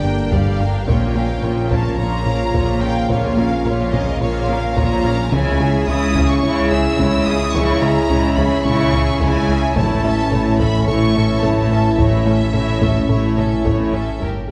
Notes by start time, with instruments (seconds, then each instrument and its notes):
Already playing: double bass section G1, detuned saw bass G1, cello section G2, analog synth pad D3 A#3 G4 D5, trombone section D3 G3, french horn section A#3 D4, violin section G5
0.04 analog synth bass G2, viola section A#3 D4, violin section A#4 G5
0.32 double bass section G1, analog synth bass G2, cello section G2, synth arpeggio sound G3, viola section G3 G4, violin section G4 D5 F5, taiko
0.60 analog synth bass G2, viola section A#3 D4, violin section A#4 G5
0.87 detuned saw bass A#1, double bass section A#1, analog synth bass A#2, cello section A#2, trombone section C#3 F3, analog synth pad F3 A#3 F4 C#5, french horn section A#3 F4, synth arpeggio sound A#3, viola section A#3 F4, violin section C#5 G5, taiko
1.15 analog synth bass A#3, viola section C#4, synth arpeggio sound F4, violin section A#4 F5
1.43 double bass section A#1, analog synth bass A#2, cello section A#2, viola section A#3 F4, synth arpeggio sound A#4, violin section C#5
1.71 analog synth bass A#2, synth arpeggio sound A#3, viola section C#4, violin section A#4 F5 A5, taiko
1.98 double bass section A#1, analog synth bass A#2, cello section A#2, viola section A#3 F4, synth arpeggio sound A#4, violin section C#5 A#5
2.26 analog synth bass A#2, viola section C#4, violin section A#4 F5
2.54 double bass section A#1, cello section A#2, analog synth bass A#2, synth arpeggio sound A#3, viola section A#3 F4, violin section C#5, taiko
2.82 analog synth bass A#2, viola section C#4, violin section A#4 F5 G5
3.09 double bass section A#1, cello section A#2, analog synth bass A#2, synth arpeggio sound A#3, viola section A#3 F4, violin section C#5 F5, taiko
3.37 analog synth bass A#3, viola section C#4, synth arpeggio sound F4, violin section A#4 F5
3.65 double bass section A#1, analog synth bass A#2, cello section A#2, viola section A#3 F4, synth arpeggio sound A#4, violin section C#5
3.92 analog synth bass A#2, synth arpeggio sound A#3, viola section C#4, violin section A#4 D#5 F5, taiko
4.21 double bass section A#1, analog synth bass A#2, cello section A#2, viola section A#3 F4, synth arpeggio sound A#4, violin section C#5 F5
4.49 analog synth bass A#2, viola section C#4, violin section A#4 F5
4.76 double bass section A#1, cello section A#2, analog synth bass A#2, synth arpeggio sound A#3, viola section A#3 F4, violin section C#5 A#5, taiko
5.05 analog synth bass A#2, viola section C#4, violin section A#4 F5
5.32 detuned saw bass C#2, double bass section C#2, analog synth bass C#2, synth arpeggio sound C#3, cello section C#3, trombone section C#3 G#3, analog synth pad G#3 C#4 E4 C#5, viola section G#3 E4, french horn section C#4 E4, violin section E4 C#5 G#5, taiko
5.60 analog synth bass C#3, synth arpeggio sound G#3, viola section C#4, violin section G#4 E5
5.88 analog synth bass C#2, double bass section C#2, cello section C#3, viola section G#3 E4, synth arpeggio sound C#4, violin section E4 C#5 D#6
6.15 analog synth bass C#2, synth arpeggio sound C#3, viola section C#4, violin section G#4 E5, taiko
6.29 violin section C#6
6.43 analog synth bass C#2, double bass section C#2, cello section C#3, viola section G#3 E4, synth arpeggio sound C#4, violin section E4 C#5
6.71 analog synth bass C#2, viola section C#4, violin section G#4 E5 E6
6.98 double bass section C#2, analog synth bass C#2, cello section C#3, synth arpeggio sound C#3, viola section G#3 E4, violin section E4 C#5, taiko
7.26 analog synth bass C#2, viola section C#4, violin section G#4 E5 D#6
7.54 double bass section C#2, analog synth bass C#2, synth arpeggio sound C#3, cello section C#3, viola section G#3 E4, violin section E4 C#5 C#6, taiko
7.82 analog synth bass C#3, synth arpeggio sound G#3, viola section C#4, violin section G#4 E5 A#5
8.10 double bass section C#2, analog synth bass C#2, cello section C#3, viola section G#3 E4, synth arpeggio sound C#4, violin section E4 C#5, taiko low-mid
8.37 analog synth bass C#2, synth arpeggio sound C#3, viola section C#4, violin section G#4 E5 B5, taiko
8.65 analog synth bass C#2, double bass section C#2, cello section C#3, viola section G#3 E4, synth arpeggio sound C#4, violin section E4 C#5 C#6, taiko low-mid
8.93 analog synth bass C#2, viola section C#4, violin section G#4 E5, taiko low-mid
9.20 analog synth bass C#2, double bass section C#2, synth arpeggio sound C#3, cello section C#3, viola section G#3 E4, violin section E4 C#5 G#5, taiko
9.48 analog synth bass C#2, viola section C#4, violin section G#4 E5
9.76 detuned saw bass A1, double bass section A1, analog synth bass A2, cello section A2, trombone section E3 A3, synth arpeggio sound A3, viola section A3 E4, analog synth pad A3 C#4 E4 C#5, french horn section C#4 E4, violin section C#5 A5, taiko
10.04 analog synth bass A3, viola section C#4, synth arpeggio sound E4, violin section A4 E5
10.32 double bass section A1, cello section A2, analog synth bass A2, viola section A3 E4, synth arpeggio sound A4, violin section C#5, taiko low-mid
10.59 analog synth bass A2, synth arpeggio sound A3, viola section C#4, violin section A4 E5 B5, taiko
10.87 double bass section A1, cello section A2, analog synth bass A2, viola section A3 E4, synth arpeggio sound A4, violin section C#5 C#6, taiko low-mid
11.15 analog synth bass A2, viola section C#4, violin section A4 E5, taiko low-mid
11.43 double bass section A1, cello section A2, analog synth bass A2, synth arpeggio sound A3, viola section A3 E4, violin section C#5 A5, taiko
11.71 analog synth bass A2, viola section C#4, violin section A4 E5
11.98 double bass section A1, cello section A2, analog synth bass A2, synth arpeggio sound A3, viola section A3 E4, violin section C#5 E5, taiko
12.26 analog synth bass A3, viola section C#4, synth arpeggio sound E4, violin section A4 E5
12.54 double bass section A1, cello section A2, analog synth bass A2, viola section A3 E4, synth arpeggio sound A4, violin section C#5, taiko low-mid
12.82 analog synth bass A2, synth arpeggio sound A3, viola section C#4, violin section A4 E5, taiko
13.09 double bass section A1, analog synth bass A2, cello section A2, viola section A3 E4, synth arpeggio sound A4, violin section C#5, taiko low-mid
13.37 analog synth bass A2, viola section C#4, violin section A4 E5, taiko low-mid
13.65 double bass section A1, cello section A2, analog synth bass A2, synth arpeggio sound A3, viola section A3 E4, violin section C#5, taiko
13.93 analog synth bass A2, viola section C#4, violin section A4 E5
14.20 detuned saw bass G1, analog synth bass G2, cello section G2, synth arpeggio sound G3, analog synth pad A#3 D4 G4 A#4, violin section G4 G5, viola section A#4, taiko